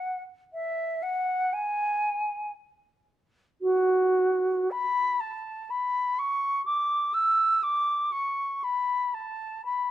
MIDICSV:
0, 0, Header, 1, 2, 480
1, 0, Start_track
1, 0, Tempo, 986842
1, 257, Time_signature, 3, 2, 24, 8
1, 1219, Tempo, 1102941
1, 2179, Tempo, 974026
1, 3619, Tempo, 1018676
1, 4691, End_track
2, 0, Start_track
2, 0, Title_t, "Flute"
2, 0, Program_c, 0, 73
2, 0, Note_on_c, 0, 78, 50
2, 107, Note_off_c, 0, 78, 0
2, 257, Note_on_c, 0, 76, 64
2, 497, Note_on_c, 0, 78, 57
2, 504, Note_off_c, 0, 76, 0
2, 743, Note_on_c, 0, 80, 67
2, 750, Note_off_c, 0, 78, 0
2, 1222, Note_off_c, 0, 80, 0
2, 1701, Note_on_c, 0, 66, 60
2, 2177, Note_on_c, 0, 83, 72
2, 2184, Note_off_c, 0, 66, 0
2, 2418, Note_on_c, 0, 81, 61
2, 2426, Note_off_c, 0, 83, 0
2, 2665, Note_on_c, 0, 83, 64
2, 2673, Note_off_c, 0, 81, 0
2, 2904, Note_on_c, 0, 85, 70
2, 2912, Note_off_c, 0, 83, 0
2, 3132, Note_off_c, 0, 85, 0
2, 3135, Note_on_c, 0, 86, 73
2, 3373, Note_on_c, 0, 88, 62
2, 3380, Note_off_c, 0, 86, 0
2, 3615, Note_on_c, 0, 86, 71
2, 3623, Note_off_c, 0, 88, 0
2, 3846, Note_on_c, 0, 85, 62
2, 3853, Note_off_c, 0, 86, 0
2, 4090, Note_on_c, 0, 83, 62
2, 4097, Note_off_c, 0, 85, 0
2, 4327, Note_on_c, 0, 81, 58
2, 4334, Note_off_c, 0, 83, 0
2, 4565, Note_off_c, 0, 81, 0
2, 4568, Note_on_c, 0, 83, 65
2, 4691, Note_off_c, 0, 83, 0
2, 4691, End_track
0, 0, End_of_file